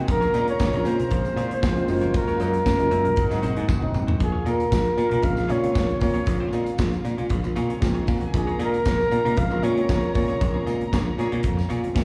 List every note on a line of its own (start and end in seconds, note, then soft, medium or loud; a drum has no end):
0.00 0.11 D#3 medium
0.00 0.11 G#3 medium
0.00 1.85 G#3 medium
0.00 0.11 A#3 medium
0.00 0.10 C4 medium
0.00 0.10 F#4 loud
0.08 0.25 A#1 loud
0.08 1.87 C#3 medium
0.08 1.87 A#3 medium
0.08 1.60 C#4 medium
0.08 1.60 A#4 loud
0.08 1.60 A#4 medium
0.08 0.45 A#4 loud
0.08 1.60 F5 loud
0.08 3.15 F5 medium
0.08 1.60 A#5 loud
0.08 kick loud
0.08 closed hi-hat loud
0.08 tambourine medium
0.08 muted conga medium
0.21 0.59 C#3 medium
0.21 0.60 G#3 medium
0.21 0.60 A#3 medium
0.21 0.60 C4 medium
0.21 0.29 D#4 medium
0.21 0.31 F4 medium
0.21 0.32 G#4 medium
0.21 0.33 C#5 medium
0.21 closed hi-hat soft
0.21 tambourine soft
0.30 0.63 F4 medium
0.30 0.50 F4 medium
0.30 0.47 G#4 medium
0.30 0.47 D#5 medium
0.34 0.51 A#2 loud
0.34 closed hi-hat medium
0.34 tambourine medium
0.34 muted conga medium
0.47 0.84 C#5 loud
0.47 muted clean electric guitar stroke soft
0.47 closed hi-hat medium
0.59 0.69 A#1 loud
0.59 kick loud
0.59 snare loud
0.59 tambourine loud
0.59 high conga medium
0.72 0.81 A#1 loud
0.72 1.10 C#3 medium
0.72 1.10 G#3 medium
0.72 1.11 A#3 medium
0.72 1.11 C4 medium
0.72 1.11 F4 medium
0.72 muted clean electric guitar stroke soft
0.72 closed hi-hat soft
0.85 1.02 A#2 medium
0.85 2.18 C5 loud
0.85 closed hi-hat medium
0.85 tambourine medium
0.85 muted conga soft
0.99 muted clean electric guitar stroke soft
0.99 closed hi-hat medium
0.99 low conga medium
1.11 1.28 A#1 loud
1.11 muted clean electric guitar stroke soft
1.11 kick loud
1.11 closed hi-hat medium
1.11 low conga medium
1.24 1.62 C#3 medium
1.24 1.62 G#3 medium
1.24 1.63 A#3 medium
1.24 1.63 C4 medium
1.24 1.31 E4 medium
1.24 muted clean electric guitar stroke soft
1.24 closed hi-hat soft
1.24 tambourine medium
1.32 1.66 F4 medium
1.36 1.53 A#2 medium
1.36 1.50 F4 loud
1.36 1.49 G#4 loud
1.36 1.49 C#5 loud
1.36 closed hi-hat medium
1.36 tambourine medium
1.36 muted conga medium
1.50 1.61 F4 soft
1.50 1.61 G#4 medium
1.50 1.62 C#5 medium
1.50 closed hi-hat medium
1.62 1.79 A#1 medium
1.62 1.83 F4 medium
1.62 1.75 G#4 loud
1.62 1.74 C#5 medium
1.62 kick loud
1.62 snare loud
1.62 tambourine medium
1.62 high conga medium
1.75 1.88 C#3 loud
1.75 1.87 G#3 medium
1.75 1.87 A#3 medium
1.75 1.89 C4 medium
1.75 1.88 F4 loud
1.75 muted clean electric guitar stroke soft
1.75 closed hi-hat soft
1.88 2.22 F#1 medium
1.88 3.16 C#3 medium
1.88 2.20 F#3 loud
1.88 4.18 F#3 medium
1.88 2.20 G#3 loud
1.88 3.16 A#3 medium
1.88 2.20 A#3 medium
1.88 2.90 A#3 medium
1.88 2.20 C#4 loud
1.88 2.90 F4 medium
1.88 2.20 F4 loud
1.88 2.90 F#4 medium
1.88 2.90 C#5 loud
1.88 2.90 F5 loud
1.88 muted clean electric guitar stroke soft
1.88 open hi-hat medium
1.88 tambourine medium
2.01 2.13 F4 soft
2.01 2.13 A#4 medium
2.01 2.13 C#5 medium
2.01 closed hi-hat medium
2.01 tambourine soft
2.01 high conga medium
2.14 2.41 A#4 loud
2.14 kick loud
2.14 closed hi-hat medium
2.14 tambourine soft
2.14 muted conga medium
2.28 2.65 F#3 medium
2.28 2.65 G#3 medium
2.28 2.65 A#3 medium
2.28 2.66 C#4 medium
2.28 2.34 D#4 medium
2.28 2.38 F4 medium
2.28 2.39 A#4 medium
2.28 2.40 C#5 medium
2.28 closed hi-hat soft
2.28 tambourine soft
2.35 2.69 F4 medium
2.35 2.56 F4 medium
2.40 2.57 F#2 medium
2.40 2.53 A#4 medium
2.40 3.92 A#4 loud
2.40 2.53 D#5 medium
2.40 closed hi-hat medium
2.40 tambourine medium
2.40 muted conga medium
2.54 muted clean electric guitar stroke soft
2.54 closed hi-hat medium
2.54 tambourine soft
2.65 2.75 F#1 loud
2.65 muted clean electric guitar stroke soft
2.65 kick loud
2.65 snare loud
2.65 tambourine loud
2.65 high conga medium
2.78 2.87 F#1 medium
2.78 3.16 F#3 medium
2.78 3.17 G#3 medium
2.78 3.17 A#3 medium
2.78 3.17 C#4 medium
2.78 3.17 F4 loud
2.78 muted clean electric guitar stroke soft
2.78 closed hi-hat medium
2.91 3.08 F#2 loud
2.91 closed hi-hat medium
2.91 tambourine soft
3.04 muted clean electric guitar stroke soft
3.04 closed hi-hat medium
3.04 low conga medium
3.16 3.26 G#1 loud
3.16 4.20 C3 medium
3.16 4.20 G#3 medium
3.16 3.94 C4 medium
3.16 4.20 D#4 medium
3.16 3.93 F#4 medium
3.16 3.94 G#4 medium
3.16 3.94 D#5 medium
3.16 3.93 F#5 loud
3.16 muted clean electric guitar stroke soft
3.16 kick loud
3.16 closed hi-hat medium
3.30 3.39 G#2 loud
3.30 3.68 F#3 loud
3.30 3.68 G#3 medium
3.30 3.68 A#3 medium
3.30 3.69 C4 medium
3.30 3.69 D#4 loud
3.30 muted clean electric guitar stroke medium
3.30 snare soft
3.30 closed hi-hat medium
3.30 tambourine medium
3.42 3.52 G#1 medium
3.42 3.56 D#4 medium
3.42 3.55 F#4 medium
3.42 3.55 C5 medium
3.42 closed hi-hat medium
3.42 tambourine medium
3.42 muted conga medium
3.42 low conga medium
3.56 3.65 G#2 medium
3.56 3.67 D#4 medium
3.56 3.67 F#4 medium
3.56 3.68 C5 medium
3.56 closed hi-hat medium
3.68 3.85 F#1 medium
3.68 3.89 D#4 medium
3.68 3.82 F#4 loud
3.68 3.81 C5 loud
3.68 kick loud
3.68 high tom medium
3.68 tambourine loud
3.68 high conga medium
3.82 4.19 F#3 medium
3.82 4.20 G#3 medium
3.82 4.20 A#3 medium
3.82 4.20 C4 medium
3.82 4.20 D#4 loud
3.82 muted clean electric guitar stroke soft
3.82 mid tom medium
3.94 4.11 G#1 medium
3.94 muted clean electric guitar stroke soft
3.94 mid tom medium
3.94 tambourine medium
4.07 4.19 D#4 medium
4.07 4.19 F#4 medium
4.07 4.20 C5 medium
4.07 floor tom loud
4.07 high conga medium
4.19 4.37 A#1 loud
4.19 7.90 F4 loud
4.19 4.49 G#4 medium
4.19 7.90 F5 loud
4.19 muted clean electric guitar stroke soft
4.19 kick loud
4.19 closed hi-hat medium
4.19 tambourine soft
4.19 muted conga medium
4.32 4.43 F4 medium
4.32 4.44 G#4 medium
4.32 4.45 C#5 medium
4.45 4.63 A#2 loud
4.45 4.62 F4 medium
4.45 4.58 G#4 medium
4.45 5.27 A#4 loud
4.45 4.58 D#5 medium
4.45 closed hi-hat medium
4.45 tambourine medium
4.45 muted conga medium
4.59 muted clean electric guitar stroke soft
4.59 closed hi-hat medium
4.59 tambourine soft
4.71 4.89 A#1 loud
4.71 muted clean electric guitar stroke soft
4.71 kick loud
4.71 snare loud
4.71 tambourine loud
4.71 high conga medium
4.84 muted clean electric guitar stroke soft
4.84 closed hi-hat soft
4.84 tambourine soft
4.97 5.07 A#2 loud
4.97 closed hi-hat medium
4.97 tambourine soft
4.97 muted conga soft
5.10 5.19 A#2 loud
5.10 5.20 C#3 medium
5.10 5.20 G#3 medium
5.10 5.20 A#3 medium
5.10 5.20 C4 medium
5.10 5.20 F4 medium
5.10 muted clean electric guitar stroke soft
5.10 closed hi-hat medium
5.10 low conga medium
5.22 5.32 A#1 medium
5.22 5.42 C#3 medium
5.22 5.43 G#3 medium
5.22 5.43 A#3 medium
5.22 5.43 C4 medium
5.22 5.43 D#4 medium
5.22 5.52 F5 loud
5.22 muted clean electric guitar stroke soft
5.22 kick loud
5.22 closed hi-hat medium
5.22 low conga medium
5.35 5.45 A#1 medium
5.35 muted clean electric guitar stroke soft
5.35 snare soft
5.35 closed hi-hat soft
5.35 tambourine medium
5.48 5.66 A#2 medium
5.48 5.59 C#3 medium
5.48 5.59 G#3 medium
5.48 5.60 A#3 medium
5.48 5.60 C4 medium
5.48 5.61 F4 medium
5.48 5.60 F4 medium
5.48 5.61 G#4 medium
5.48 5.60 C#5 medium
5.48 6.02 C#5 loud
5.48 closed hi-hat medium
5.48 tambourine soft
5.48 muted conga medium
5.61 5.91 C#3 medium
5.61 5.91 G#3 medium
5.61 5.92 A#3 medium
5.61 5.92 C4 medium
5.61 5.72 F4 soft
5.61 5.92 F4 medium
5.61 5.73 G#4 medium
5.61 5.73 C#5 medium
5.61 closed hi-hat medium
5.73 5.92 A#1 loud
5.73 5.95 F4 medium
5.73 5.87 G#4 medium
5.73 5.86 C#5 loud
5.73 kick loud
5.73 snare loud
5.73 tambourine medium
5.73 high conga medium
5.88 muted clean electric guitar stroke soft
5.88 closed hi-hat soft
6.00 6.18 A#2 medium
6.00 6.29 C#3 medium
6.00 6.29 G#3 medium
6.00 6.30 A#3 medium
6.00 6.30 C4 medium
6.00 6.30 F4 medium
6.00 6.50 C#5 medium
6.00 muted clean electric guitar stroke soft
6.00 kick loud
6.00 open hi-hat medium
6.00 tambourine medium
6.14 6.25 F4 medium
6.14 6.26 G#4 medium
6.14 6.26 C#5 medium
6.14 closed hi-hat medium
6.14 tambourine soft
6.14 high conga medium
6.26 6.44 A#1 loud
6.26 kick loud
6.26 closed hi-hat loud
6.26 tambourine medium
6.26 muted conga medium
6.39 7.16 C#3 medium
6.39 7.17 G#3 medium
6.39 7.17 A#3 soft
6.39 7.17 C4 medium
6.39 6.51 F4 medium
6.39 7.17 F4 medium
6.39 6.52 G#4 medium
6.39 6.53 C#5 medium
6.52 6.70 A#2 medium
6.52 6.69 F4 medium
6.52 6.65 G#4 medium
6.52 6.66 D#5 medium
6.52 closed hi-hat medium
6.52 tambourine medium
6.52 muted conga medium
6.66 muted clean electric guitar stroke soft
6.66 closed hi-hat medium
6.66 tambourine soft
6.78 6.95 A#1 loud
6.78 muted clean electric guitar stroke soft
6.78 kick loud
6.78 snare loud
6.78 tambourine loud
6.78 high conga medium
6.91 muted clean electric guitar stroke soft
6.91 closed hi-hat soft
6.91 tambourine soft
7.05 7.13 A#2 medium
7.05 closed hi-hat medium
7.05 tambourine soft
7.17 7.26 A#2 medium
7.17 muted clean electric guitar stroke soft
7.17 closed hi-hat soft
7.17 low conga medium
7.29 7.39 A#1 loud
7.29 muted clean electric guitar stroke soft
7.29 kick medium
7.29 closed hi-hat medium
7.43 7.52 A#1 medium
7.43 muted clean electric guitar stroke soft
7.43 closed hi-hat soft
7.43 tambourine medium
7.56 7.73 A#2 loud
7.56 7.70 F4 medium
7.56 7.69 G#4 medium
7.56 7.69 C#5 medium
7.56 closed hi-hat medium
7.56 tambourine medium
7.56 muted conga soft
7.56 low conga medium
7.68 7.78 C#3 medium
7.68 7.78 G#3 medium
7.68 7.79 A#3 medium
7.68 7.79 C4 medium
7.68 7.79 F4 medium
7.68 7.80 F4 soft
7.68 7.81 G#4 medium
7.68 7.81 C#5 medium
7.68 closed hi-hat medium
7.80 7.99 A#1 loud
7.80 8.58 C#3 medium
7.80 8.58 G#3 medium
7.80 8.58 A#3 medium
7.80 8.58 C4 medium
7.80 8.58 D#4 loud
7.80 muted clean electric guitar stroke soft
7.80 kick loud
7.80 snare loud
7.80 tambourine medium
7.80 high conga medium
7.94 8.06 F4 medium
7.94 8.07 G#4 medium
7.94 8.07 C#5 medium
7.94 closed hi-hat soft
8.00 8.08 D#4 medium
8.00 8.08 D#5 medium
8.07 8.25 A#2 medium
8.07 8.17 F4 medium
8.07 8.17 F5 medium
8.07 muted clean electric guitar stroke soft
8.07 kick loud
8.07 open hi-hat medium
8.07 tambourine medium
8.16 8.25 F#4 medium
8.16 8.25 F#5 medium
8.21 muted clean electric guitar stroke soft
8.21 closed hi-hat medium
8.21 high conga medium
8.25 8.34 G#4 medium
8.25 8.34 G#5 medium
8.34 8.51 A#1 loud
8.34 8.63 G#4 medium
8.34 12.04 A#4 loud
8.34 12.04 A#5 loud
8.34 muted clean electric guitar stroke soft
8.34 kick loud
8.34 closed hi-hat medium
8.34 tambourine medium
8.34 muted conga medium
8.47 8.57 F4 medium
8.47 8.58 G#4 medium
8.47 8.59 C#5 medium
8.47 closed hi-hat soft
8.58 8.76 A#2 loud
8.58 8.75 F4 medium
8.58 8.72 G#4 medium
8.58 9.39 A#4 loud
8.58 8.72 D#5 medium
8.58 closed hi-hat medium
8.58 tambourine soft
8.58 muted conga medium
8.73 muted clean electric guitar stroke soft
8.73 closed hi-hat medium
8.73 tambourine soft
8.85 9.02 A#1 loud
8.85 muted clean electric guitar stroke soft
8.85 kick loud
8.85 snare loud
8.85 tambourine loud
8.85 high conga medium
8.99 muted clean electric guitar stroke soft
8.99 tambourine soft
9.11 9.20 A#2 loud
9.11 closed hi-hat medium
9.11 tambourine medium
9.24 9.33 A#2 medium
9.24 9.34 C#3 medium
9.24 9.34 G#3 medium
9.24 9.34 A#3 medium
9.24 9.34 C4 medium
9.24 9.34 D#4 medium
9.24 muted clean electric guitar stroke soft
9.24 closed hi-hat medium
9.24 low conga medium
9.37 9.46 A#1 medium
9.37 9.56 C#3 medium
9.37 9.57 G#3 medium
9.37 9.57 A#3 medium
9.37 9.57 C4 medium
9.37 9.57 F4 medium
9.37 9.65 F5 loud
9.37 muted clean electric guitar stroke soft
9.37 kick loud
9.37 closed hi-hat medium
9.37 low conga medium
9.51 9.59 A#1 loud
9.51 muted clean electric guitar stroke soft
9.51 tambourine medium
9.62 9.80 A#2 loud
9.62 9.73 C#3 medium
9.62 9.73 G#3 medium
9.62 9.73 A#3 medium
9.62 9.74 C4 medium
9.62 9.76 F4 medium
9.62 9.74 F4 medium
9.62 9.75 G#4 medium
9.62 10.14 C#5 loud
9.62 9.75 C#5 medium
9.62 closed hi-hat medium
9.62 tambourine soft
9.62 muted conga medium
9.76 10.05 C#3 medium
9.76 10.05 G#3 medium
9.76 10.05 A#3 medium
9.76 10.05 C4 medium
9.76 9.87 F4 soft
9.76 10.06 F4 medium
9.76 9.88 G#4 medium
9.76 9.88 C#5 medium
9.76 closed hi-hat medium
9.89 10.06 A#1 loud
9.89 10.09 F4 medium
9.89 10.02 G#4 medium
9.89 10.01 C#5 medium
9.89 kick loud
9.89 snare loud
9.89 tambourine medium
9.89 high conga medium
10.02 muted clean electric guitar stroke soft
10.02 closed hi-hat soft
10.14 10.32 A#2 medium
10.14 10.43 C#3 medium
10.14 10.43 G#3 medium
10.14 10.43 A#3 medium
10.14 10.44 C4 medium
10.14 10.44 F4 medium
10.14 10.63 C#5 medium
10.14 muted clean electric guitar stroke soft
10.14 kick loud
10.14 open hi-hat medium
10.14 tambourine medium
10.28 10.39 F4 medium
10.28 10.39 G#4 medium
10.28 10.39 C#5 medium
10.28 closed hi-hat medium
10.28 tambourine soft
10.28 high conga medium
10.41 10.58 A#1 loud
10.41 kick loud
10.41 closed hi-hat medium
10.41 tambourine medium
10.41 muted conga medium
10.54 11.30 C#3 medium
10.54 11.31 G#3 medium
10.54 11.31 A#3 soft
10.54 11.31 C4 medium
10.54 10.64 F4 medium
10.54 11.31 F4 medium
10.54 10.65 G#4 medium
10.54 10.66 C#5 medium
10.66 10.83 A#2 medium
10.66 10.82 F4 medium
10.66 10.79 G#4 medium
10.66 10.79 D#5 medium
10.66 closed hi-hat medium
10.66 tambourine medium
10.66 muted conga medium
10.80 muted clean electric guitar stroke soft
10.80 closed hi-hat soft
10.91 11.10 A#1 loud
10.91 11.01 A#3 medium
10.91 11.01 G#4 medium
10.91 11.01 C#5 medium
10.91 muted clean electric guitar stroke soft
10.91 kick loud
10.91 snare loud
10.91 tambourine loud
10.91 high conga medium
11.05 muted clean electric guitar stroke soft
11.18 11.27 A#2 loud
11.18 11.35 A#3 medium
11.18 11.35 G#4 loud
11.18 11.35 C#5 loud
11.18 closed hi-hat medium
11.18 tambourine soft
11.18 muted conga soft
11.32 11.40 A#2 loud
11.32 muted clean electric guitar stroke soft
11.32 closed hi-hat soft
11.32 low conga medium
11.43 11.61 F2 medium
11.43 kick loud
11.43 closed hi-hat medium
11.57 muted clean electric guitar stroke soft
11.57 snare soft
11.57 tambourine medium
11.69 11.86 A#2 medium
11.69 11.90 F4 medium
11.69 11.83 G#4 loud
11.69 11.82 C#5 loud
11.69 closed hi-hat medium
11.69 tambourine medium
11.69 muted conga soft
11.69 low conga medium
11.83 11.92 C#3 medium
11.83 11.92 G#3 medium
11.83 11.93 A#3 medium
11.83 11.93 C4 medium
11.83 11.93 F4 medium
11.83 muted clean electric guitar stroke medium
11.83 closed hi-hat medium
11.94 12.04 A#1 medium
11.94 12.04 C#3 medium
11.94 12.04 G#3 medium
11.94 12.04 A#3 medium
11.94 12.04 C4 medium
11.94 12.04 F4 medium
11.94 12.04 G#4 medium
11.94 12.04 C#5 medium
11.94 kick loud
11.94 snare loud
11.94 tambourine medium
11.94 high conga medium